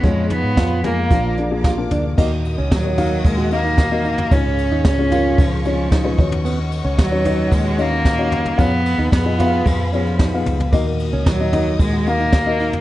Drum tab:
CC |----------------|x---------------|----------------|----------------|
RD |----------------|--x-x-x-x-xxx-xx|x-x-x-x-x-x-x-x-|x-x-x-x-x-x-x-xx|
HH |x-x-x-x-x-x-x-x-|----------------|----------------|----------------|
SD |----o-------o---|----o-------o---|----o-------o---|----o-------o---|
FT |--o---o-------o-|------o--------o|------o--------o|------o-------oo|
BD |o---o---o---o---|o---o---o---o---|o---o---o---o-o-|----o---o---o---|

CC |----------------|----------------|
RD |x-x-x-x-x-xxx-xx|x-x-x-x-x-xxx-x-|
HH |----------------|----------------|
SD |----o-------o---|----o-------o---|
FT |------o-------oo|------o--------o|
BD |o---o---o---o---|o---o---o---o---|